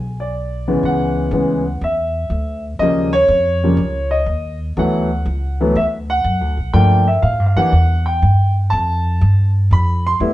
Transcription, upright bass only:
0.00 0.79 B1 medium
0.83 1.30 C#2 medium
1.31 1.79 D2 medium
1.81 2.29 E2 medium
2.30 2.78 D2 medium
2.79 3.27 D#2 medium
3.28 3.76 F2 medium
3.77 4.25 C#2 medium
4.26 4.75 D#2 medium
4.77 5.25 D2 medium
5.25 5.74 C#2 medium
5.75 6.23 D2 medium
6.24 6.41 F#2 medium
6.41 6.57 D2 medium
6.57 6.73 B1 medium
6.74 7.22 G2 medium
7.23 7.39 A2 medium
7.39 7.56 G2 medium
7.56 7.71 F2 medium
7.72 8.20 E2 medium
8.22 8.70 G2 medium
8.73 9.20 F2 medium
9.21 9.69 G2 medium
9.71 10.19 F2 medium
10.20 10.34 E2 medium

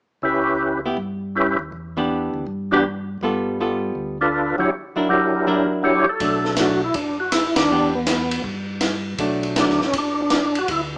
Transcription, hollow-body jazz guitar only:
0.86 0.97 B3 soft
0.86 0.97 E4 soft
0.86 0.97 G4 soft
1.97 2.44 E3 medium
1.97 2.45 B3 medium
1.97 2.45 D4 medium
1.97 2.45 G4 medium
2.72 2.83 E3 medium
2.72 2.84 B3 medium
2.72 2.83 D4 medium
2.72 2.84 G4 medium
3.23 3.58 G3 soft
3.23 3.59 B3 medium
3.23 3.59 F4 medium
3.23 3.59 A4 medium
3.60 4.17 G3 soft
3.60 4.17 B3 soft
3.60 4.17 F4 soft
3.60 4.17 A4 soft
4.96 5.07 F#3 soft
4.96 5.08 D4 soft
4.96 5.08 E4 medium
4.96 5.08 A#4 medium
5.47 6.03 F#3 soft
5.47 6.03 D4 medium
5.47 6.04 E4 medium
5.47 6.04 A#4 medium
6.21 6.57 F#3 soft
6.21 6.57 A3 soft
6.21 6.57 D4 soft
6.59 6.80 F#3 soft
6.59 6.81 A3 medium
6.59 6.81 D4 medium
7.71 7.93 E3 soft
7.71 7.93 B3 soft
7.71 7.93 D4 soft
7.71 7.93 G4 medium
9.19 9.55 F#3 soft
9.19 9.56 A3 medium
9.19 9.56 D4 medium
9.57 9.79 F#3 medium
9.57 9.79 A3 soft
9.57 9.79 D4 medium

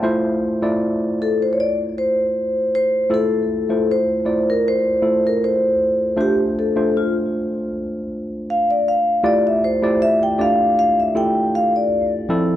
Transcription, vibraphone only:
1.22 1.42 A4 medium
1.42 1.51 C5 medium
1.53 1.58 C#5 medium
1.60 1.77 D5 loud
1.98 2.74 C5 medium
2.75 3.13 C5 medium
3.14 3.91 A4 medium
3.91 4.50 C5 medium
4.50 4.66 A#4 medium
4.68 5.27 C5 loud
5.27 5.34 A#4 medium
5.44 6.21 C5 medium
6.21 6.37 G4 medium
6.59 6.97 A4 medium
6.97 7.14 F4 medium
8.50 8.70 F5 medium
8.71 8.87 D5 medium
8.88 9.26 F5 medium
9.26 9.44 D5 medium
9.47 9.64 E5 medium
9.64 10.03 C5 medium
10.02 10.20 E5 loud
10.23 10.40 G5 loud
10.41 10.78 F5 medium
10.79 10.99 F5 loud
11.00 11.07 E5 medium
11.17 11.55 G5 loud
11.55 11.64 F5 medium
11.76 12.10 D5 medium

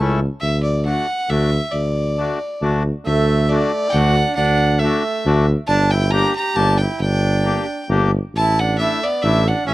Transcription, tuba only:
0.00 0.27 C#2 medium
0.42 0.99 D2 medium
1.30 1.58 D2 loud
1.73 2.30 D2 medium
2.61 2.91 D2 medium
3.06 3.63 D2 medium
3.94 4.22 D2 loud
4.37 4.94 D2 medium
5.26 5.54 D2 loud
5.68 6.25 G1 medium
6.56 6.85 G1 medium
6.99 7.58 G1 medium
7.89 8.18 G1 medium
8.34 8.92 A1 medium
9.23 9.51 A1 medium
9.67 9.74 A1 medium

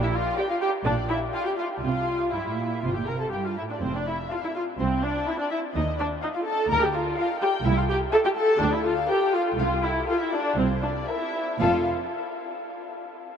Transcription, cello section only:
0.00 0.28 A#2 medium
0.86 1.24 A#2 medium
1.83 2.22 C3 medium
2.33 2.38 G2 medium
2.47 2.58 A2 medium
2.58 2.83 A#2 medium
2.84 2.89 C3 medium
2.97 3.08 A#2 soft
3.08 3.33 C3 medium
3.33 3.58 G2 soft
3.58 3.83 A2 soft
3.83 4.21 F2 medium
4.79 5.17 C2 medium
5.75 6.13 D#2 medium
6.70 7.08 D2 medium
7.65 8.03 C2 loud
8.61 8.99 D2 medium
9.59 9.97 C2 medium
10.58 10.98 C2 medium
11.61 11.88 F2 medium

